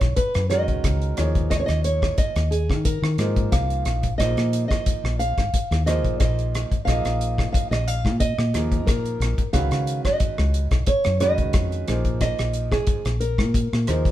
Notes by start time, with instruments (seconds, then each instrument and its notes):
Already playing: nylon-string guitar C#5
0.01 fingered electric bass B1, kick, cross-stick, closed hi-hat
0.16 nylon-string guitar B4, kick, closed hi-hat
0.34 fingered electric bass F#2, cross-stick, closed hi-hat
0.50 grand piano D#3 G#3 C#4 F#4 A#4, nylon-string guitar D#5, cross-stick, closed hi-hat
0.68 fingered electric bass C#2, kick, closed hi-hat
0.84 fingered electric bass C#2, kick, cross-stick, closed hi-hat
1.02 closed hi-hat
1.17 fingered electric bass D#2, grand piano F3 A#3 D#4 G#4 C#5, cross-stick, closed hi-hat
1.23 nylon-string guitar C#5
1.35 kick, closed hi-hat
1.50 nylon-string guitar D#5, kick, cross-stick, closed hi-hat
1.60 nylon-string guitar C#5
1.66 fingered electric bass D#2, nylon-string guitar D#5, cross-stick, closed hi-hat
1.84 nylon-string guitar C#5, closed hi-hat
2.02 kick, cross-stick
2.18 nylon-string guitar D#5, kick, closed hi-hat
2.36 fingered electric bass D#2, cross-stick, closed hi-hat
2.51 nylon-string guitar G#4, closed hi-hat
2.69 fingered electric bass D#3, kick, cross-stick
2.85 nylon-string guitar A#4, kick, closed hi-hat
3.02 fingered electric bass D#3, cross-stick
3.18 fingered electric bass G#2, grand piano F3 A#3 D#4 G#4 C5, cross-stick, closed hi-hat
3.36 kick, closed hi-hat
3.52 fingered electric bass C2, nylon-string guitar F5, kick, cross-stick, closed hi-hat
3.70 closed hi-hat
3.85 fingered electric bass A#1, cross-stick, closed hi-hat
4.03 kick, closed hi-hat
4.18 fingered electric bass A#1, grand piano F3 A#3 D#4 G#4 C5, nylon-string guitar D#5, kick, cross-stick, closed hi-hat
4.37 fingered electric bass A#2, cross-stick, closed hi-hat
4.53 closed hi-hat
4.68 nylon-string guitar D#5, kick, cross-stick, closed hi-hat
4.86 kick, closed hi-hat
5.03 fingered electric bass A#1, cross-stick
5.19 nylon-string guitar F5, closed hi-hat
5.38 fingered electric bass G#1, kick, cross-stick, closed hi-hat
5.54 muted fingered electric bass stroke, kick, closed hi-hat
5.71 fingered electric bass D#2, cross-stick, closed hi-hat
5.86 grand piano F3 A#3 D#4 G#4 C5, nylon-string guitar D#5, cross-stick, closed hi-hat
6.04 fingered electric bass A#1, kick, closed hi-hat
6.20 fingered electric bass A#1, nylon-string guitar D#5, kick, cross-stick, closed hi-hat
6.39 closed hi-hat
6.55 cross-stick, closed hi-hat
6.71 muted fingered electric bass stroke, kick, closed hi-hat
6.85 fingered electric bass A#1, grand piano F3 A#3 D#4 G#4 D#5, nylon-string guitar F5, kick, cross-stick, closed hi-hat
7.05 fingered electric bass A#1, cross-stick, closed hi-hat
7.21 closed hi-hat
7.38 kick, cross-stick
7.52 nylon-string guitar F5, muted fingered electric bass stroke, kick, closed hi-hat
7.71 fingered electric bass A#1, nylon-string guitar D#5, cross-stick, closed hi-hat
7.88 nylon-string guitar F5, closed hi-hat
8.05 fingered electric bass A#2, kick, cross-stick
8.20 nylon-string guitar D#5, kick, closed hi-hat
8.38 fingered electric bass A#2, cross-stick
8.54 fingered electric bass D#2, grand piano F3 A#3 D#4 G#4 A#4, cross-stick, closed hi-hat
8.72 kick, closed hi-hat
8.86 fingered electric bass A#2, nylon-string guitar A#4, kick, cross-stick, closed hi-hat
9.06 closed hi-hat
9.20 fingered electric bass A#1, cross-stick, closed hi-hat
9.38 kick, closed hi-hat
9.53 fingered electric bass C#2, grand piano D#3 G#3 C#4 F#4 B4, nylon-string guitar F5, kick, cross-stick, closed hi-hat
9.71 fingered electric bass C#3, cross-stick, closed hi-hat
9.87 closed hi-hat
10.05 nylon-string guitar D#5, kick, cross-stick, closed hi-hat
10.20 kick, closed hi-hat
10.38 fingered electric bass C#2, cross-stick
10.54 closed hi-hat
10.71 fingered electric bass B1, kick, cross-stick, closed hi-hat
10.87 nylon-string guitar C#5, kick, closed hi-hat
11.04 fingered electric bass F#2, cross-stick, closed hi-hat
11.20 grand piano D#3 G#3 C#4 F#4 B4, nylon-string guitar D#5, cross-stick, closed hi-hat
11.38 fingered electric bass C#2, kick, closed hi-hat
11.53 fingered electric bass F2, kick, cross-stick, closed hi-hat
11.72 closed hi-hat
11.87 fingered electric bass A#1, grand piano F3 A#3 D#4 G#4 C5, cross-stick, closed hi-hat
12.05 kick, closed hi-hat
12.21 nylon-string guitar D#5, kick, cross-stick, closed hi-hat
12.39 fingered electric bass A#1, cross-stick, closed hi-hat
12.53 closed hi-hat
12.71 nylon-string guitar G#4, kick, cross-stick
12.87 muted fingered electric bass stroke, kick, closed hi-hat
13.05 fingered electric bass A#1, cross-stick, closed hi-hat
13.20 nylon-string guitar A#4, closed hi-hat
13.38 fingered electric bass A#2, kick, cross-stick
13.54 kick, closed hi-hat
13.73 fingered electric bass A#2, cross-stick
13.87 fingered electric bass D#2, grand piano F3 A#3 D#4 G#4 C5, cross-stick, closed hi-hat
14.05 kick, closed hi-hat